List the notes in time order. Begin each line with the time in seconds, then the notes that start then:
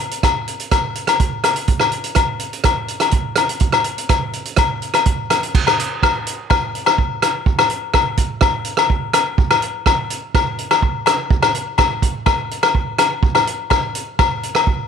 0.11 closed hi-hat
0.23 kick, cross-stick, closed hi-hat, low agogo
0.48 closed hi-hat
0.59 closed hi-hat
0.71 kick, cross-stick, closed hi-hat, low agogo
0.95 closed hi-hat
1.07 cross-stick, closed hi-hat, low agogo
1.20 kick, closed hi-hat
1.44 cross-stick, closed hi-hat, low agogo
1.56 closed hi-hat
1.68 kick, closed hi-hat
1.80 cross-stick, low agogo
1.92 closed hi-hat
2.04 closed hi-hat
2.15 kick, cross-stick, closed hi-hat, low agogo
2.39 closed hi-hat
2.53 closed hi-hat
2.64 kick, cross-stick, closed hi-hat, low agogo
2.88 closed hi-hat
3.00 cross-stick, closed hi-hat, low agogo
3.11 kick, closed hi-hat
3.36 cross-stick, closed hi-hat, low agogo
3.49 closed hi-hat
3.60 kick, closed hi-hat
3.72 cross-stick, low agogo
3.84 closed hi-hat
3.98 closed hi-hat
4.09 kick, cross-stick, closed hi-hat, low agogo
4.33 closed hi-hat
4.45 closed hi-hat
4.56 kick, cross-stick, closed hi-hat, low agogo
4.82 closed hi-hat
4.94 cross-stick, closed hi-hat, low agogo
5.06 kick, closed hi-hat
5.30 cross-stick, closed hi-hat, low agogo
5.43 closed hi-hat
5.55 kick, crash
5.67 cross-stick, low agogo
5.79 closed hi-hat
6.03 kick, cross-stick, low agogo
6.27 closed hi-hat
6.50 kick, cross-stick, low agogo
6.75 closed hi-hat
6.86 cross-stick, low agogo
6.98 kick
7.22 cross-stick, closed hi-hat, low agogo
7.46 kick
7.59 cross-stick, low agogo
7.70 closed hi-hat
7.94 kick, cross-stick, low agogo
8.17 kick, closed hi-hat
8.41 kick, cross-stick, low agogo
8.65 closed hi-hat
8.77 cross-stick, low agogo
8.90 kick
9.13 cross-stick, closed hi-hat, low agogo
9.38 kick
9.51 cross-stick, low agogo
9.62 closed hi-hat
9.86 kick, cross-stick, low agogo
10.10 closed hi-hat
10.35 kick, cross-stick, low agogo
10.58 closed hi-hat
10.71 cross-stick, low agogo
10.82 kick
11.06 cross-stick, closed hi-hat, low agogo
11.30 kick
11.42 cross-stick, low agogo
11.55 closed hi-hat
11.78 kick, cross-stick, low agogo
12.02 kick, closed hi-hat
12.26 kick, cross-stick, low agogo
12.51 closed hi-hat
12.63 cross-stick, low agogo
12.75 kick
12.98 cross-stick, closed hi-hat, low agogo
13.23 kick
13.35 cross-stick, low agogo
13.47 closed hi-hat
13.70 kick, cross-stick, low agogo
13.95 closed hi-hat
14.19 kick, cross-stick, low agogo
14.43 closed hi-hat
14.55 cross-stick, low agogo
14.67 kick